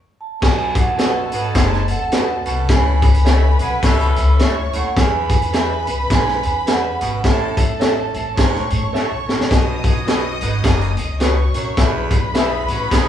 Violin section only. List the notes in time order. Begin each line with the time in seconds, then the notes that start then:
0.42 A4 A5
2.69 B4 B5
4.39 C#5 C#6
4.96 B4 B5
7.24 A4 A5
8.37 C#5 C#6
9.50 D#5 D#6
11.21 C#5 C#6
11.78 B4 B5